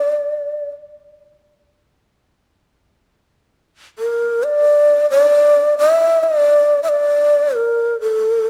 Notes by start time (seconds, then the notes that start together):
Already playing: D5
3.99 A#4
4.44 D5
5.10 D5
5.79 E5
6.24 D5
6.83 E5
6.89 D5
7.56 A#4
8.01 A4